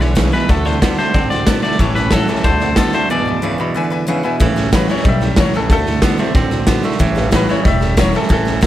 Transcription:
Already playing: B1 E2 D3
0.00 D4 E4 B4 C#5 E5 G#5, snare
0.15 E2 C#3 E3 G#3 D4 E4 B4 E5 G#5, kick, snare, hi-hat pedal
0.32 E2 B2 D4 E4 B4 E5 G#5, snare
0.49 D2 D3 A3 C4 F#4 A4 D5 F#5 A5, kick, snare
0.65 C4 F#4 A4 C5 D5 F#5 A5, snare
0.82 D3 A3 B3 C4 F#4 A4 D5 F#5 A5, kick, snare, hi-hat pedal
0.98 D3 A3 C4 F#4 A4 C5 D5 F#5 A5, snare
1.14 A1 D3 A3 C4 A4 D5 F#5 A5, kick, snare
1.30 C4 F#4 A4 D5 F#5 C6, snare
1.46 D3 A3 B3 C4 F#4 A4 D5 F#5 A5, kick, snare, hi-hat pedal
1.62 D3 A3 C4 F#4 A4 D5 F#5 A5, snare
1.71 snare
1.78 A1 A2 E3 G3 C#4 G4 A4 C#5 E5 A5, kick, snare
1.95 G3 C#4 G4 A4 B4 C#5 E5 A5, snare
2.11 A2 E3 F#3 G3 C#4 G4 A4 C#5 E5 A5, kick, snare, hi-hat pedal
2.27 A2 E3 G3 C#4 G4 A4 C#5 E5 A5, snare
2.36 snare
2.43 D2 D3 A3 C4 F#4 A4 C5 D5 F#5 A5, kick, snare
2.60 C4 F#4 A4 D5 F#5 A5, snare
2.76 D3 A3 B3 C4 F#4 A4 D5 F#5 C6, kick, snare, hi-hat pedal
2.93 D3 A3 C4 F#4 A4 C5 D5 F#5 A5, snare
3.10 E2 B2 E3 G#3 D4 E4 B4 D5 E5 G#5
3.27 D4 E4 B4 E5 G#5
3.42 E2 C#3 E3 G#3 D4 E4 B4 E5 G#5
3.58 E2 B2 D4 E4 B4 E5 B5
3.74 E2 D3 G#3 D4 E4 B4 E5 G#5
3.90 D4 E4 B4 E5 G#5 B5
4.07 E2 C#3 E3 G#3 D4 E4 B4 E5 F#5 G#5
4.23 E2 B2 D4 E4 B4 E5 G#5
4.40 A1 A2 C#3 E3 G3 B3 C#4 G4 A4, kick, snare
4.56 G3 C#4 G4 A4, snare
4.72 A2 E3 F#3 G3 C#4 G4 A4 B4, kick, snare, hi-hat pedal
4.89 A2 E3 G3 C#4 G4 A4 C#5, snare
4.97 snare
5.04 B1 A2 C#3 G3 B3 C#4 G4 A4 D#5, kick, snare
5.09 E5
5.21 G3 C#4 G4 A4, snare
5.36 C#2 A2 E3 F#3 G3 C#4 G4 A4 C#5, kick, snare, hi-hat pedal
5.53 A2 E3 G3 C#4 G4 A4, snare
5.68 D2 D3 A3 C4 F#4 G#4 A4, kick, snare
5.73 A4
5.86 C4 F#4 A4, snare
6.02 D3 A3 B3 C4 F#4 A4, kick, snare, hi-hat pedal
6.18 D3 E3 F#3 A3 C4 F#4 A4, snare
6.35 A1 D3 A3 C4 F#4 A4, kick, snare
6.51 C4 F#4 A4, snare
6.67 D3 A3 B3 C4 F#4 A4, kick, snare, hi-hat pedal
6.83 D3 A3 C4 F#4 A4, snare
6.92 snare
6.99 A1 A2 E3 G3 C#4 G4 A4, kick, snare
7.15 C#3 G3 B3 C#4 G4 A4, snare
7.31 A2 E3 F#3 G3 C#4 G4 A4, kick, snare, hi-hat pedal
7.35 B4
7.48 A2 E3 G3 C#4 A4 C#5, snare
7.63 E1 A2 G3 C#4 G4 A4 D#5, kick, snare
7.68 E5
7.81 G3 C#4 G4 A4, snare
7.97 A2 E3 F#3 G3 C#4 G4 A4 C#5, kick, snare, hi-hat pedal
8.13 A2 E3 G3 C#4 G4 A4, snare
8.23 snare
8.28 A1 A2 E3 G3 C#4 G4 G#4 A4, kick, snare
8.33 A4
8.45 G3 C#4 G4 A4, snare
8.61 A2 E3 F#3 G3 C#4 G4 A4, kick, snare, hi-hat pedal

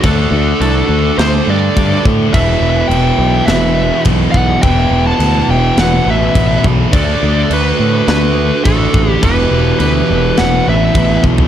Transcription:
0.02 D2 D3 A3 D4 A4, kick, crash
0.07 F#4
0.31 D2
0.60 C2 F#4 A4, crash
0.89 D2
1.18 D2 A4 C5, snare, crash
1.47 G2 A4 D5
1.77 G2, kick, crash
2.05 A2, kick
2.33 E1 E2 B2 E3 B4 E5, kick, crash
2.61 E1
2.88 E1 E5 G5, crash
3.18 B1
3.46 E1 B4 E5, snare, crash
4.05 B1, kick, crash
4.31 B1 D5 F#5, kick
4.62 E1 E2 B2 E3 E5 G5, kick, crash
4.91 E1
5.06 F#5 A5
5.19 D2, crash
5.49 E1 E5 G5
5.77 E1 B4 F#5, snare, crash
6.06 A1 B4 E5
6.35 A1, kick, crash
6.64 B1, kick
6.93 D2 D3 A3 D4 A4 D5, kick, crash
7.23 D2
7.50 D2 F#4 B4, crash
7.80 A2
8.08 D2 F#4 B4, snare, crash
8.64 A1 F#4 A4, kick, crash
8.94 A1, kick
9.08 E4 G4
9.23 E1 E2 B2 E3 G4 B4, kick, crash
9.51 E1
9.79 D2 G4 B4, crash
10.10 E1
10.37 E1 B4 F#5, snare, crash
10.67 A1 B4 E5
10.95 A1, kick, crash
11.24 B1, kick
11.38 floor tom

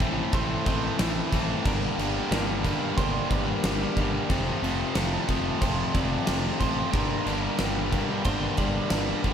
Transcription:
Already playing: C4 A4 G5
0.00 A1 A2 E3 A3 C4 E4, kick, crash
0.33 A1 A2 E3 A3 C4 E4 C5, kick, crash
0.66 A1 A2 E3 A3 C4 E4 D#5, kick, crash
0.99 A1 A2 E3 A3 C4 E4, snare, crash
1.32 A1 A2 E3 A3 C4 E4 A4, kick, crash
1.64 G1 G2 D3 G3 A#3 D4 F4 A#4 G5, kick, crash
1.98 G1 G2 D3 G3 A#3 D4, crash
2.31 G1 G2 D3 G3 A#3 D4 A#4, snare, crash
2.64 G2 D3 G3 A#3 D4, kick, crash
2.97 G1 G2 D3 G3 A#3 D4 C5, kick, crash
3.30 G1 G2 D3 G3 A#3 D4 D5, kick, crash
3.63 G1 G2 D3 G3 A#3 D4, snare, crash
3.96 G1 G2 D3 G3 A#3 D4 G4, kick, crash
4.29 F1 F2 C3 F3 A3 C4 A4 C5 A5, kick, crash
4.62 F1 F2 C3 F3 A3 C4, crash
4.95 F1 F2 C3 F3 A3 C4 A4, snare, crash
5.28 F1 F2 C3 F3 A3 C4, kick, crash
5.61 F1 F2 C3 F3 A3 C4 C5, kick, crash
5.93 F1 F2 C3 F3 A3 C4 D5, kick, crash
6.26 F1 F2 C3 F3 A3 C4, snare, crash
6.59 A1 F2 C3 F3 A3 C4 C5, kick, crash
6.93 G1 G2 D3 G3 A#3 D4 A#4 G5, kick, crash
7.26 G1 G2 D3 G3 A#3 D4, crash
7.59 G1 G2 D3 G3 A#3 D4 A#4, snare, crash
7.92 G2 D3 G3 A#3 D4, kick, crash
8.25 G1 G2 D3 G3 A#3 D4 C5, kick, crash
8.57 G1 G2 D3 G3 A#3 D4 D5, kick, crash
8.90 G1 G2 D3 G3 A#3 D4, snare, crash
9.23 G1 G2 D3 G3 A#3 D4 G4, kick, crash

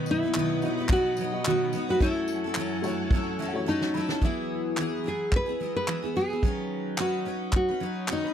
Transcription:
Already playing: B2 D#3 F#3 B3 D#4 F#4 B4 D#5 F#5
0.06 tambourine
0.11 E4
0.22 F#3 B3 D#4 B4
0.34 B2 D#3 F#3 B3 D#4 B4, clap
0.61 F#3 B3 D#4 F#4 B4 D#5, tambourine
0.77 F#3 B3 D#4 B4
0.89 F#3 B3 F#4, kick, clap
0.93 D#4 B4
1.17 F#3 B3, tambourine
1.21 D#4 B4
1.31 B3 D#4 F#4 D#5
1.45 B2 D#3 F#3 B3 D#4 F#4 B4, clap
1.73 F#3 B3 D#4 B4, tambourine
1.89 F#3 B3 D#4 F#4 B4
1.99 F#2 F#3 A3 C#4 E4 F#4 A4 C#5 F#5 G#5, kick
2.28 tambourine
2.44 C#4 E4 A4
2.55 F#3 C#4 E4, clap
2.59 A4
2.82 F#3 A3 E4 F#4 C#5, tambourine
2.86 C#4 E4 A4
3.11 F#3 C#4 E4 A4, kick
3.39 F#3 C#4 E4 A4 E5
3.48 F#5
3.54 E3 A3 F#4 C#5
3.66 F#3 C#4 D#4 E4 A4 A5
3.81 snare
3.94 F#3 C#4 E4 A4 B5
4.09 C#4 E4 A4, snare
4.21 E3 F#3 B3 E4 G#4, kick
4.77 E3 F#3 B3 E4 G#4, clap
5.04 F#3 B3 E4 G#4
5.08 G#4
5.32 kick, clap
5.36 B4
5.46 B3 E4 G#4
5.60 F#3 B3 E4 G#4
5.76 B4
5.87 E3 F#3 B3 E4 G#4, clap
6.02 B3 E4 G#4
6.16 F#3 B3 E4 G#4
6.30 B3 E4 G#4
6.43 D#3 F#3 C#4 D#4 B4, kick
6.97 D#3 F#3 C#4 D#4 F#4 B4, clap
7.25 F#3 C#4 D#4 B4
7.52 F#4, kick, clap
7.69 C#4 D#4 B4
7.80 F#3 C#4 D#4 B4
8.08 D#3 F#3 C#4 D#4 B4, clap
8.13 D#4
8.24 C#4 D#4 B4

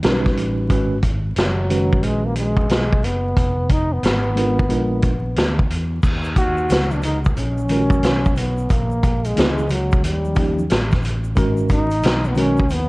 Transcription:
0.03 B1 G3 C#4 D#4 F#4 A#4, snare, closed hi-hat
0.12 B4
0.26 kick, snare
0.36 A1, closed hi-hat
0.69 G#1 D#3 G#3 C#4 F#4 B4, kick, closed hi-hat
1.03 kick, closed hi-hat
1.36 F#1 F#3, snare, closed hi-hat
1.69 D#3 G#3 C#4 F#4 B4, closed hi-hat
1.93 kick
2.03 A#1 G#3, closed hi-hat
2.26 A#3
2.36 G#3, closed hi-hat
2.57 kick
2.69 B1, snare, closed hi-hat
2.93 kick
3.03 F#1 B3, closed hi-hat
3.37 F1, kick, closed hi-hat
3.69 D#4, kick, closed hi-hat
3.93 B3
4.02 G#1, snare, closed hi-hat
4.36 G#3 B3 D4 F4 A#4, closed hi-hat
4.59 kick
4.68 A#1 G#3 B3 D4 F4 A#4, closed hi-hat
5.02 kick, closed hi-hat
5.36 D2, snare, closed hi-hat
5.59 kick
5.70 E2, closed hi-hat
6.03 D#2, kick, crash, shaker
6.24 shaker
6.36 F#4, kick, closed hi-hat, shaker
6.57 shaker
6.70 C#2, snare, closed hi-hat, low conga, shaker
6.91 D4, high conga, shaker
7.02 D#4, closed hi-hat, low conga, shaker
7.24 kick, shaker
7.36 A#1 C#4, closed hi-hat, high conga, shaker
7.58 high conga, shaker
7.69 D#3 G#3 C#4 F4 A#4, closed hi-hat, shaker
7.77 F#4
7.90 kick, high conga, shaker
8.03 B1, snare, closed hi-hat, shaker
8.25 kick, shaker
8.36 B3, closed hi-hat, low conga, shaker
8.58 shaker
8.70 A#1 A#3, kick, closed hi-hat, shaker
8.91 shaker
9.03 kick, closed hi-hat, shaker
9.24 G#3, closed hi-hat, shaker
9.36 C#2 G#3 A#3 C#4 E4 G#4, snare, closed hi-hat, low conga, shaker
9.58 high conga, shaker
9.69 F#3, closed hi-hat, low conga, shaker
9.92 kick, shaker
10.03 D#2 G3, closed hi-hat, high conga, shaker
10.25 high conga, shaker
10.35 F3 A#3 C#4 D#4 G4, kick, closed hi-hat, shaker
10.59 high conga, shaker
10.70 A1, snare, closed hi-hat, shaker
10.91 kick, snare, shaker
11.03 closed hi-hat, low conga, shaker
11.24 shaker
11.35 G#1 D#3 G#3 C#4 F#4 A#4, kick, closed hi-hat, shaker
11.57 shaker
11.69 D#4, kick, closed hi-hat, shaker
11.90 closed hi-hat, shaker
12.03 B1, snare, closed hi-hat, low conga, shaker
12.24 B3, high conga, shaker
12.35 D#3 G#3 C#4 F#4 A#4, closed hi-hat, low conga, shaker
12.39 C#4
12.57 kick, shaker
12.70 D#2 B3, closed hi-hat, high conga, shaker

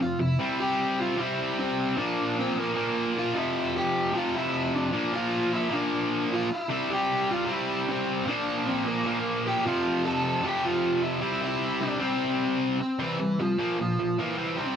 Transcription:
Already playing: C4 C5
0.00 F2 C3 F4 F5
0.19 F2 C3 E4 E5
0.39 C3 G3 C4
0.60 G4 G5
1.00 F4 F5
1.17 C3 G3 C4 E4
1.21 E5
1.58 C4 C5
1.97 A#2 F3 A#3 D4 D5
2.39 C4 C5
2.57 A#3 A#4
2.75 A#2 F3 A#3
3.18 F4 F5
3.34 F2 C3 F3 E4
3.39 E5
3.76 G4 G5
4.14 F2 C3 F3 F4 F5
4.34 E4 E5
4.74 D4 D5
4.92 A#2 F3 A#3
5.13 F4 F5
5.53 E4 E5
5.70 A#2 F3 A#3 D4
5.76 D5
6.33 F4 F5
6.52 E4 E5
6.69 C3 G3 C4
6.90 G4 G5
7.31 F4 F5
7.46 C3 G3 C4
7.50 E4 E5
7.88 C4 C5
8.25 A#2 F3 A#3 D4
8.30 D5
8.66 C4 C5
8.85 A#3 A#4
9.05 A#2 F3 A#3
9.47 G4 G5
9.65 F2 C3 F3 F4 F5
10.05 A4 A5
10.42 F2 C3 F3 G4
10.48 G5
10.65 F4 F5
11.02 E4 E5
11.21 C3 G3 C4
11.42 E4 E5
11.81 D4 D5
12.00 C3 G3 C4 C5
12.81 C4 C5
12.99 C3 E3 G3 C4 E4
13.19 C3 G3
13.40 C3 F3 G3 F4
13.58 A#2 F3 A#3
13.79 A#2 F3 F4
13.99 A#2 F3
14.18 A#2 E3 F3 A#3 E4
14.38 C3 G3 C4
14.57 C3 G3 C4 C5

